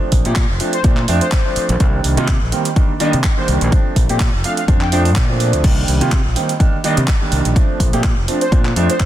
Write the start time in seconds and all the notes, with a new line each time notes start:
Already playing: F3 A3 C4 D4
0.12 A#1, kick, open hi-hat
0.25 A#2 F3 A3 C4 G4, closed hi-hat
0.36 kick, clap, closed hi-hat
0.50 F1
0.60 F3 A3 C4 D4, open hi-hat
0.73 C5, closed hi-hat
0.84 A#2 F3 A3 C4 D4, kick, closed hi-hat
0.97 clap
1.08 F2 F3 A3 C4 D4, open hi-hat
1.21 C5, closed hi-hat
1.32 kick, clap, closed hi-hat
1.45 F3 A3 C4 D4
1.56 muted fingered electric bass stroke, open hi-hat
1.69 A#1, closed hi-hat
1.80 C2 D#3 G3 A#3 D4, kick, closed hi-hat
2.04 C2, open hi-hat
2.17 C3 D#3 G3 A#3 F4, closed hi-hat
2.28 kick, clap, closed hi-hat
2.42 A#1
2.52 D#3 G3 A#3 C4, open hi-hat
2.65 closed hi-hat
2.76 D#3 G3 A#3 D4, kick, closed hi-hat
3.00 D#3 G3 A#3 D4 D#5, open hi-hat
3.13 C3, closed hi-hat
3.24 kick, clap, closed hi-hat
3.37 D#3 G3 A#3 D4 C5
3.48 C2, open hi-hat
3.61 A#1, closed hi-hat
3.72 F3 A3 C4 D4, kick, closed hi-hat
3.96 A#1, kick, open hi-hat
4.09 A#2 F3 A3 C4 G4, closed hi-hat
4.20 kick, clap, closed hi-hat
4.34 F1
4.44 F3 A3 C4 D4 F5, open hi-hat
4.57 F5, closed hi-hat
4.68 F2 F3 A3 C4 D4, kick, closed hi-hat
4.81 G5, clap
4.92 F3 A3 C4 D4 G5, open hi-hat
5.05 open hi-hat
5.16 A#2, kick, clap, closed hi-hat
5.29 F3 A3 C4 D4
5.40 open hi-hat
5.53 D2, closed hi-hat
5.64 C2 D#3 G3 A#3 D4, kick, closed hi-hat, crash
5.88 C2, open hi-hat
6.01 C3 D#3 G3 A#3 F4, closed hi-hat
6.12 kick, clap, closed hi-hat
6.25 A#1
6.36 D#3 G3 A#3 C4, open hi-hat
6.49 closed hi-hat
6.60 D#3 G3 A#3 D4, kick, closed hi-hat
6.84 D#3 G3 A#3 D4 D#5, open hi-hat
6.97 C3, closed hi-hat
7.08 kick, clap, closed hi-hat
7.21 D#3 G3 A#3 D4
7.32 C2, open hi-hat
7.45 A#1, closed hi-hat
7.56 F3 A3 C4 D4, kick, closed hi-hat
7.80 A#1, kick, open hi-hat
7.93 A#2 F3 A3 C4 G4, closed hi-hat
8.04 kick, clap, closed hi-hat
8.17 F1
8.28 F3 A3 C4 D4, open hi-hat
8.41 C5, closed hi-hat
8.52 A#2 F3 A3 C4 D4, kick, closed hi-hat
8.65 clap
8.76 F2 F3 A3 C4 D4, open hi-hat
8.90 C5, closed hi-hat
9.00 kick, clap, closed hi-hat